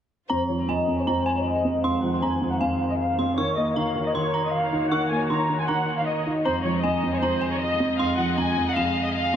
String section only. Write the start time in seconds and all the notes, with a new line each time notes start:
0.30 D#3 G#3 F4 C5
3.38 A#3 F#4 C#5
6.45 G#3 F4 D#5